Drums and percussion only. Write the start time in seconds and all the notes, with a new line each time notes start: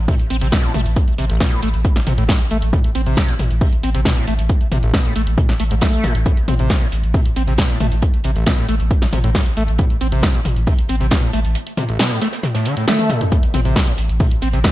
0.08 kick, closed hi-hat, open hi-hat, mid tom
0.19 closed hi-hat
0.30 closed hi-hat, open hi-hat
0.41 snare, closed hi-hat
0.52 kick, snare, closed hi-hat
0.63 closed hi-hat
0.74 closed hi-hat, open hi-hat, mid tom
0.86 open hi-hat
0.96 kick, closed hi-hat
1.08 closed hi-hat
1.18 closed hi-hat, open hi-hat
1.30 closed hi-hat
1.40 kick, snare, closed hi-hat, mid tom
1.52 closed hi-hat
1.62 closed hi-hat, open hi-hat
1.74 closed hi-hat
1.85 kick, closed hi-hat
1.96 snare, open hi-hat
2.07 closed hi-hat, open hi-hat, mid tom
2.18 closed hi-hat
2.28 kick, snare, closed hi-hat
2.40 snare, closed hi-hat
2.51 closed hi-hat, open hi-hat
2.62 closed hi-hat
2.73 kick, closed hi-hat, mid tom
2.84 closed hi-hat
2.95 closed hi-hat, open hi-hat
3.06 closed hi-hat
3.17 kick, snare, closed hi-hat
3.29 snare, closed hi-hat
3.39 closed hi-hat, open hi-hat, mid tom
3.51 closed hi-hat
3.61 kick, closed hi-hat, open hi-hat
3.72 closed hi-hat
3.83 closed hi-hat, open hi-hat
3.95 snare, closed hi-hat
4.05 kick, snare, closed hi-hat, mid tom
4.16 closed hi-hat
4.27 closed hi-hat, open hi-hat
4.39 open hi-hat
4.49 kick, closed hi-hat
4.61 closed hi-hat
4.72 closed hi-hat, open hi-hat, mid tom
4.83 closed hi-hat
4.94 kick, snare, closed hi-hat
5.05 closed hi-hat
5.15 closed hi-hat, open hi-hat
5.27 closed hi-hat
5.38 kick, closed hi-hat, mid tom
5.49 snare, open hi-hat
5.60 closed hi-hat, open hi-hat
5.71 closed hi-hat
5.81 kick, snare, closed hi-hat
5.93 closed hi-hat
6.04 closed hi-hat, open hi-hat, mid tom
6.15 closed hi-hat
6.26 kick, closed hi-hat
6.37 closed hi-hat
6.48 closed hi-hat, open hi-hat, mid tom
6.59 closed hi-hat
6.70 kick, snare, closed hi-hat
6.81 snare, closed hi-hat
6.92 closed hi-hat, open hi-hat
7.04 closed hi-hat
7.14 kick, closed hi-hat, open hi-hat, mid tom
7.25 closed hi-hat
7.36 closed hi-hat, open hi-hat
7.48 snare, closed hi-hat
7.58 kick, snare, closed hi-hat
7.69 closed hi-hat
7.80 closed hi-hat, open hi-hat, mid tom
7.92 open hi-hat
8.02 kick, closed hi-hat
8.14 closed hi-hat
8.24 closed hi-hat, open hi-hat
8.36 closed hi-hat
8.46 kick, snare, closed hi-hat, mid tom
8.58 closed hi-hat
8.68 closed hi-hat, open hi-hat
8.80 closed hi-hat
8.91 kick, closed hi-hat
9.02 snare, open hi-hat
9.13 closed hi-hat, open hi-hat, mid tom
9.24 closed hi-hat
9.35 kick, snare, closed hi-hat
9.46 snare, closed hi-hat
9.57 closed hi-hat, open hi-hat
9.68 closed hi-hat
9.78 kick, closed hi-hat, mid tom
9.90 closed hi-hat
10.01 closed hi-hat, open hi-hat
10.12 closed hi-hat
10.23 kick, snare, closed hi-hat
10.34 snare, closed hi-hat
10.45 closed hi-hat, open hi-hat, mid tom
10.56 closed hi-hat
10.67 kick, closed hi-hat, open hi-hat
10.78 closed hi-hat
10.89 closed hi-hat, open hi-hat
11.00 snare, closed hi-hat
11.11 kick, snare, closed hi-hat, mid tom
11.23 closed hi-hat
11.33 closed hi-hat, open hi-hat
11.45 open hi-hat
11.55 closed hi-hat
11.67 closed hi-hat
11.77 closed hi-hat, open hi-hat, mid tom
11.89 closed hi-hat
11.99 snare, closed hi-hat
12.11 closed hi-hat
12.22 snare, closed hi-hat, open hi-hat
12.33 snare, closed hi-hat
12.43 snare, closed hi-hat, mid tom
12.55 snare, closed hi-hat, open hi-hat
12.65 closed hi-hat, open hi-hat
12.77 closed hi-hat
12.87 snare, closed hi-hat, high tom
12.99 closed hi-hat, high tom
13.09 closed hi-hat, open hi-hat, mid tom
13.21 closed hi-hat, mid tom
13.32 kick, closed hi-hat, shaker
13.43 closed hi-hat, shaker
13.54 closed hi-hat, open hi-hat, mid tom, shaker
13.65 closed hi-hat, shaker
13.76 kick, snare, closed hi-hat, shaker
13.87 snare, closed hi-hat, shaker
13.98 closed hi-hat, open hi-hat, shaker
14.09 closed hi-hat, shaker
14.20 kick, closed hi-hat, open hi-hat, mid tom, shaker
14.31 closed hi-hat, shaker
14.42 closed hi-hat, open hi-hat, shaker
14.53 snare, closed hi-hat, shaker
14.64 kick, snare, closed hi-hat, shaker